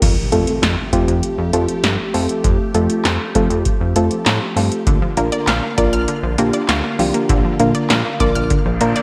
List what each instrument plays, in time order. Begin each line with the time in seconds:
0.02 analog synth bass F2, analog synth pad F3 A3 G4, kick, closed hi-hat, crash, impact
0.32 analog synth bass F2, synth pluck A3 C4 F4 A4, closed hi-hat
0.47 closed hi-hat
0.62 analog synth bass F2, snare, closed hi-hat
0.93 analog synth bass F2, synth pluck A3 C4 F4 G4, kick, closed hi-hat
1.08 analog synth bass F2, closed hi-hat
1.23 closed hi-hat
1.38 analog synth bass F2
1.53 analog synth bass F2, synth pluck A3 C4 F4 A4, closed hi-hat
1.68 closed hi-hat
1.84 analog synth bass G2, snare, closed hi-hat
2.14 analog synth bass F2, synth pluck A3 C4 F4 A4, open hi-hat
2.29 closed hi-hat
2.44 analog synth bass F2, kick, closed hi-hat
2.74 analog synth bass F2, synth pluck A3 C4 F4 A4, closed hi-hat
2.90 closed hi-hat
3.05 analog synth bass F2, snare, clap, closed hi-hat
3.35 analog synth bass F2, synth pluck A3 C4 F4 A4, kick, closed hi-hat
3.50 analog synth bass F2, closed hi-hat
3.65 kick, closed hi-hat
3.81 analog synth bass F2
3.96 analog synth bass F2, synth pluck A3 C4 F4 A4, closed hi-hat
4.11 closed hi-hat
4.26 analog synth bass A2, snare, clap, closed hi-hat
4.56 analog synth bass G2, synth pluck A3 C4 F4 A4, open hi-hat
4.72 closed hi-hat
4.87 analog synth bass A#1, analog synth pad D3 A#3 F4, synth arpeggio sound D3, kick, closed hi-hat
5.02 synth arpeggio sound F3
5.17 analog synth bass A#1, synth arpeggio sound A#3, synth pluck A#3 D4 F4 A#4, closed hi-hat
5.32 synth arpeggio sound D5, closed hi-hat
5.47 analog synth bass A#1, synth arpeggio sound F5, snare, clap, closed hi-hat
5.63 synth arpeggio sound A#3
5.78 analog synth bass A#1, synth pluck A#3 D4 F4 A#4, synth arpeggio sound D5, kick, closed hi-hat
5.93 analog synth bass A#1, synth arpeggio sound F6, closed hi-hat
6.08 synth arpeggio sound D3, closed hi-hat
6.23 analog synth bass A#1, synth arpeggio sound F3
6.38 analog synth bass A#1, synth arpeggio sound A#3, synth pluck A#3 D4 F4 G4, closed hi-hat
6.53 synth arpeggio sound D5, closed hi-hat
6.69 analog synth bass D2, synth arpeggio sound F5, snare, clap, closed hi-hat
6.84 synth arpeggio sound A#3
6.99 analog synth bass C2, synth arpeggio sound F3, synth pluck A#3 D4 F4 G4, open hi-hat
7.14 synth arpeggio sound A#3, closed hi-hat
7.29 analog synth bass A#1, synth arpeggio sound D3, kick, closed hi-hat
7.44 synth arpeggio sound F3
7.60 analog synth bass A#1, synth pluck A#3 D4 F4 A#4, synth arpeggio sound A#3, closed hi-hat
7.75 synth arpeggio sound D5, closed hi-hat
7.90 analog synth bass A#1, synth arpeggio sound F5, snare, clap, closed hi-hat
8.05 synth arpeggio sound A#3
8.20 analog synth bass A#1, synth pluck A#3 D4 F4 A#4, synth arpeggio sound D5, kick, closed hi-hat
8.35 analog synth bass A#1, synth arpeggio sound F6, closed hi-hat
8.50 synth arpeggio sound D3, kick, closed hi-hat, reverse cymbal
8.66 analog synth bass A#1, synth arpeggio sound F3
8.81 analog synth bass A#1, synth arpeggio sound A#3, synth pluck A#3 D4 F4 A#4, closed hi-hat
8.96 synth arpeggio sound D5, closed hi-hat